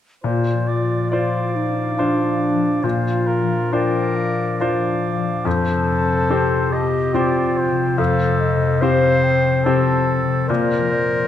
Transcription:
0.24 2.82 A#2 soft
0.24 1.09 A#2 soft
0.24 1.57 F4 soft
0.24 0.69 C5 soft
0.24 1.14 D5 soft
0.53 1.97 F3 soft
0.67 1.09 D5 soft
0.83 4.73 D5 soft
1.10 1.95 F4 soft
1.10 1.95 C5 soft
1.10 2.84 D5 soft
1.10 1.94 D5 soft
1.10 2.82 F5 soft
1.41 4.00 C5 soft
1.56 2.00 D#4 soft
1.69 2.25 D4 soft
1.98 2.54 F3 soft
1.98 2.80 D4 soft
1.98 2.83 D4 medium
1.98 2.80 F4 soft
1.98 2.80 C5 soft
2.55 3.41 F3 soft
2.83 5.49 A#2 soft
2.83 3.70 A#2 soft
2.83 3.75 F4 medium
2.83 3.28 C5 soft
2.83 3.70 F5 soft
3.27 3.74 A#4 soft
3.42 4.58 F3 soft
3.73 4.56 D4 soft
3.73 7.63 F4 soft
3.73 4.56 F4 soft
3.73 5.03 A#4 medium
3.73 4.56 C5 soft
3.73 4.59 D5 soft
3.73 4.17 G5 soft
4.01 6.57 C5 soft
4.15 4.58 F5 soft
4.31 4.87 D4 soft
4.59 5.15 F3 soft
4.59 5.42 D4 soft
4.59 5.42 F4 soft
4.59 5.42 C5 soft
4.59 5.48 D5 soft
4.59 5.46 F5 soft
4.88 5.49 D4 soft
5.16 9.06 F3 soft
5.45 6.28 F2 soft
5.45 7.97 F2 soft
5.45 6.73 A4 medium
5.45 6.30 C5 soft
5.45 6.86 A5 soft
5.73 7.13 C3 soft
6.02 6.85 C4 soft
6.29 7.10 C4 soft
6.29 8.83 G4 soft
6.29 7.10 G4 soft
6.29 6.74 C5 soft
6.29 7.10 C5 soft
6.58 9.10 C5 soft
6.71 7.15 G4 medium
6.71 7.17 D#5 soft
6.86 7.41 C4 soft
7.13 7.70 C3 soft
7.13 7.95 C4 soft
7.13 7.98 F4 medium
7.13 7.95 G4 soft
7.13 7.95 C5 soft
7.13 7.59 D5 soft
7.13 7.99 G5 soft
7.42 8.25 C4 soft
7.57 9.39 C5 soft
7.71 8.54 C3 soft
7.97 8.79 F2 soft
7.97 10.52 F2 soft
7.97 8.83 A4 medium
7.97 8.39 F5 soft
8.39 8.84 D#5 soft
8.55 9.65 C3 soft
8.81 9.61 C4 soft
8.81 9.62 G4 soft
8.81 10.06 C5 medium
8.81 9.62 C5 soft
8.81 9.25 F5 soft
9.11 11.28 C5 soft
9.24 9.66 G5 soft
9.39 9.93 C4 soft
9.64 10.21 C3 soft
9.64 10.45 C4 soft
9.64 10.46 G4 soft
9.64 10.45 A4 soft
9.64 10.46 C5 soft
9.64 10.21 A5 soft
9.95 11.28 C4 soft
10.22 10.53 C3 soft
10.47 11.28 A#2 soft
10.47 11.28 A#4 medium
10.47 10.89 C5 soft
10.47 10.90 D5 soft
10.78 11.28 F3 soft
10.90 11.28 C5 soft
10.90 11.28 D5 soft
11.07 11.28 D5 soft

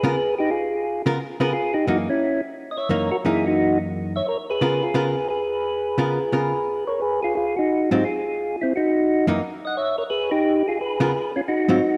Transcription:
0.00 0.14 C#3 medium
0.00 0.14 B3 medium
0.00 0.35 G#4 medium
0.00 0.35 B4 medium
0.05 0.15 F4 medium
0.05 0.15 A#4 medium
0.39 0.50 D#4 medium
0.39 0.51 G4 medium
0.50 1.02 F4 medium
0.50 1.02 G#4 medium
1.06 1.17 C#3 medium
1.06 1.17 B3 medium
1.06 1.17 F4 medium
1.06 1.17 A#4 medium
1.40 1.51 C#3 medium
1.40 1.52 B3 medium
1.40 1.52 F4 medium
1.40 1.51 G#4 medium
1.40 1.52 A#4 medium
1.40 1.53 B4 medium
1.52 1.73 F4 medium
1.52 1.75 G#4 medium
1.74 1.86 D#4 medium
1.74 1.87 G4 medium
1.87 2.07 F#2 medium
1.87 2.07 E3 medium
1.87 2.07 A#3 medium
1.87 2.07 D#4 medium
1.87 1.98 D#4 medium
1.87 1.97 F#4 medium
2.10 2.41 C#4 medium
2.10 2.41 E4 medium
2.71 2.77 D#5 medium
2.77 2.89 C#5 medium
2.77 2.90 E5 medium
2.89 3.09 F#2 medium
2.89 3.09 E3 medium
2.89 3.10 A#3 medium
2.89 3.10 D#4 medium
2.89 3.10 A#4 medium
2.89 3.10 C#5 medium
3.11 3.17 F#4 medium
3.11 3.17 A#4 medium
3.25 4.20 F#2 medium
3.25 4.20 E3 medium
3.25 4.20 A#3 medium
3.25 4.20 D#4 medium
3.25 3.45 E4 medium
3.25 3.45 G#4 medium
3.47 3.79 D#4 medium
3.47 3.78 F#4 medium
4.16 4.26 C#5 medium
4.16 4.27 E5 medium
4.27 4.38 A#4 medium
4.27 4.37 C#5 medium
4.50 4.81 G#4 medium
4.50 4.84 B4 medium
4.61 4.81 C#3 medium
4.61 4.81 B3 medium
4.61 4.81 F4 medium
4.61 4.81 A#4 medium
4.83 4.95 F4 medium
4.83 4.95 G#4 medium
4.94 5.14 C#3 medium
4.94 5.15 B3 medium
4.94 5.15 F4 medium
4.94 5.28 G#4 medium
4.94 5.15 A#4 medium
4.94 5.27 B4 medium
5.29 6.85 G#4 medium
5.29 6.93 B4 medium
5.98 6.17 C#3 medium
5.98 6.18 B3 medium
5.98 6.18 F4 medium
5.98 6.18 A#4 medium
6.32 6.52 C#3 medium
6.32 6.52 B3 medium
6.32 6.52 F4 medium
6.32 6.53 A#4 medium
6.87 7.00 A#4 medium
6.87 7.01 C#5 medium
7.00 7.21 G#4 medium
7.00 7.20 B4 medium
7.23 7.35 F4 medium
7.23 7.34 G#4 medium
7.35 7.56 F4 medium
7.35 7.55 G#4 medium
7.57 7.90 D#4 medium
7.57 7.92 F#4 medium
7.91 8.03 G#2 medium
7.91 8.03 F#3 medium
7.91 8.03 C4 medium
7.91 8.04 D#4 medium
7.91 8.03 F4 medium
7.91 8.03 G4 medium
8.04 8.56 F4 medium
8.04 8.56 G#4 medium
8.61 8.73 C4 medium
8.61 8.73 E4 medium
8.76 9.27 D#4 medium
8.76 9.26 F#4 medium
9.27 9.39 F#2 medium
9.27 9.39 E3 medium
9.27 9.40 A#3 medium
9.27 9.40 D#4 medium
9.65 9.75 D#5 medium
9.65 9.78 F#5 medium
9.77 9.96 C#5 medium
9.77 9.97 E5 medium
9.98 10.03 A#4 medium
9.98 10.04 C#5 medium
10.10 10.30 G#4 medium
10.10 10.32 B4 medium
10.31 10.63 D#4 medium
10.31 10.66 G4 medium
10.68 10.79 F4 medium
10.68 10.79 G#4 medium
10.81 11.31 G#4 medium
10.81 11.31 B4 medium
11.00 11.11 C#3 medium
11.00 11.11 B3 medium
11.00 11.11 F4 medium
11.00 11.11 A#4 medium
11.36 11.41 C#4 medium
11.36 11.42 F4 medium
11.48 11.97 D#4 medium
11.48 11.97 F#4 medium
11.68 11.79 G#2 medium
11.68 11.80 F#3 medium
11.68 11.80 C4 medium
11.68 11.80 F4 medium

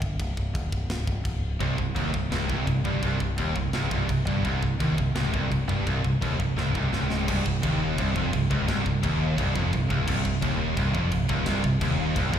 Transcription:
0.02 0.18 G1 medium
0.02 kick loud
0.20 0.36 C1 loud
0.20 kick loud
0.20 china medium
0.37 0.54 C1 medium
0.37 kick medium
0.55 0.71 D#1 medium
0.55 kick loud
0.55 china medium
0.72 0.89 C1 medium
0.72 kick loud
0.90 1.06 C#1 medium
0.90 snare loud
0.90 china medium
1.07 1.24 C1 medium
1.07 kick loud
1.25 1.58 C#1 medium
1.25 kick medium
1.25 china medium
1.60 1.77 C1 loud
1.60 1.77 C2 medium
1.60 kick medium
1.60 china medium
1.78 1.95 C1 medium
1.78 1.93 C2 medium
1.78 kick medium
1.96 2.13 D#1 medium
1.96 2.13 D#2 loud
1.96 kick loud
1.96 china medium
2.14 2.30 C1 medium
2.14 2.28 C2 medium
2.14 kick medium
2.32 2.48 C#1 medium
2.32 2.49 C#2 medium
2.32 snare loud
2.32 china medium
2.49 2.66 C1 medium
2.49 2.66 C2 loud
2.49 kick loud
2.67 2.84 C1 medium
2.67 2.82 C2 medium
2.67 kick medium
2.67 china medium
2.84 3.02 G1 medium
2.84 3.02 G2 loud
2.84 kick loud
3.03 3.19 C1 medium
3.03 3.19 C2 loud
3.03 kick loud
3.03 china medium
3.20 3.37 C1 medium
3.20 3.35 C2 medium
3.20 kick medium
3.38 3.55 D#1 medium
3.38 3.55 D#2 loud
3.38 kick loud
3.38 china medium
3.56 3.72 C1 medium
3.56 3.70 C2 medium
3.56 kick medium
3.73 3.90 C#1 medium
3.73 3.91 C#2 loud
3.73 snare loud
3.73 china medium
3.91 4.08 C1 medium
3.91 4.08 C2 medium
3.91 kick loud
4.09 4.26 C1 medium
4.09 4.23 C2 medium
4.09 kick medium
4.09 china medium
4.27 4.43 G1 medium
4.27 4.44 G2 loud
4.27 kick medium
4.45 4.61 C1 loud
4.45 4.62 C2 medium
4.45 kick loud
4.45 china medium
4.62 4.79 C1 medium
4.62 4.77 C2 medium
4.62 kick medium
4.80 4.97 D#1 medium
4.80 4.97 D#2 loud
4.80 kick loud
4.80 china medium
4.98 5.14 C1 medium
4.98 5.12 C2 medium
4.98 kick loud
5.15 5.32 C#1 medium
5.15 5.33 C#2 medium
5.15 snare loud
5.15 china medium
5.33 5.50 C1 medium
5.33 5.50 C2 loud
5.33 kick loud
5.51 5.68 C1 medium
5.51 5.65 C2 medium
5.51 kick medium
5.51 china medium
5.69 5.85 G1 medium
5.69 5.86 G2 loud
5.69 kick loud
5.86 6.03 C1 medium
5.86 6.03 C2 medium
5.86 kick medium
5.86 china medium
6.04 6.21 C1 medium
6.04 6.18 C2 medium
6.04 kick medium
6.21 6.38 D#1 medium
6.21 6.39 D#2 loud
6.21 kick loud
6.21 china medium
6.39 6.56 C1 medium
6.39 6.53 C2 medium
6.39 kick loud
6.56 6.73 C#1 medium
6.56 6.74 C#2 loud
6.56 snare medium
6.74 6.91 C1 medium
6.74 6.92 C2 medium
6.74 kick loud
6.92 7.25 C#1 medium
6.92 7.27 C#2 medium
6.92 snare medium
7.10 snare medium
7.28 7.44 C1 loud
7.28 7.44 C2 loud
7.28 kick loud
7.28 crash loud
7.28 china medium
7.45 7.62 C1 medium
7.45 7.59 C2 medium
7.45 kick medium
7.63 7.96 D#1 medium
7.63 7.97 D#2 loud
7.63 kick loud
7.63 china medium
7.98 8.15 C1 medium
7.98 8.15 C2 loud
7.98 kick loud
7.98 china medium
8.16 8.32 F1 medium
8.16 8.32 F2 loud
8.16 kick loud
8.33 8.49 C1 medium
8.33 8.47 C2 medium
8.33 kick medium
8.33 china medium
8.50 8.67 C#1 medium
8.50 8.67 C#2 loud
8.50 kick loud
8.67 8.84 C1 loud
8.67 8.83 C2 loud
8.67 kick loud
8.67 snare loud
8.67 china medium
8.85 9.02 C1 medium
8.85 8.99 C2 medium
8.85 kick medium
9.03 9.36 D#1 loud
9.03 9.37 D#2 loud
9.03 kick loud
9.03 china medium
9.38 9.54 C1 medium
9.38 9.55 C2 loud
9.38 kick loud
9.38 china medium
9.55 9.72 F1 loud
9.55 9.72 F2 loud
9.55 kick loud
9.73 9.89 C1 medium
9.73 9.87 C2 medium
9.73 kick loud
9.73 china medium
9.90 10.06 C#1 medium
9.90 10.07 C#2 loud
9.90 kick loud
10.07 10.24 C1 loud
10.07 10.24 C2 loud
10.07 kick loud
10.07 china medium
10.07 crash loud
10.25 10.41 C1 medium
10.25 10.39 C2 medium
10.25 kick medium
10.42 10.75 D#1 medium
10.42 10.77 D#2 loud
10.42 kick loud
10.42 china medium
10.77 10.93 C1 loud
10.77 10.94 C2 loud
10.77 kick loud
10.77 china medium
10.95 11.11 F1 medium
10.95 11.11 F2 loud
10.95 kick loud
11.12 11.28 C1 medium
11.12 11.26 C2 medium
11.12 kick medium
11.12 china medium
11.29 11.45 C#1 medium
11.29 11.46 C#2 loud
11.29 kick loud
11.46 11.63 C1 loud
11.46 11.63 C2 loud
11.46 kick medium
11.46 snare loud
11.46 china medium
11.64 11.80 C1 medium
11.64 11.78 C2 medium
11.64 kick medium
11.81 12.13 D#1 medium
11.81 12.15 D#2 loud
11.81 kick loud
11.81 china medium
12.16 12.32 C1 medium
12.16 12.33 C2 loud
12.16 kick loud
12.16 china medium
12.33 12.39 F1 medium
12.33 12.39 F2 loud
12.33 kick loud

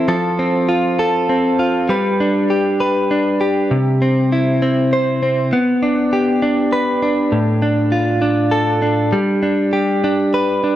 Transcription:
0.00 0.15 C4 medium
0.00 0.15 E4 soft
0.08 1.89 F3 medium
0.08 0.98 A4 medium
0.39 1.28 C4 medium
0.69 1.58 F4 medium
0.99 1.89 A4 medium
1.29 1.95 C4 medium
1.59 1.95 F4 medium
1.89 5.39 G3 medium
1.89 2.79 B4 soft
2.20 3.10 D4 medium
2.50 3.40 G4 medium
2.80 3.77 B4 medium
3.11 3.77 D4 medium
3.41 4.32 G4 medium
3.71 5.52 C3 medium
4.02 4.61 C4 medium
4.32 5.59 E4 medium
4.62 5.21 C4 medium
4.93 5.59 C5 medium
5.23 5.58 C4 medium
5.53 7.32 B3 medium
5.83 6.42 D4 medium
6.13 7.38 G4 medium
6.42 7.02 D4 medium
6.73 7.38 B4 medium
7.03 7.62 D4 medium
7.32 9.13 A2 medium
7.62 8.21 D4 medium
7.92 9.19 F4 medium
8.22 8.82 D4 medium
8.51 9.18 A4 medium
8.82 9.42 D4 soft
9.12 10.76 G3 medium
9.43 10.04 D4 medium
9.73 10.76 G4 medium
10.04 10.63 D4 medium
10.34 10.76 B4 medium
10.64 10.76 D4 medium

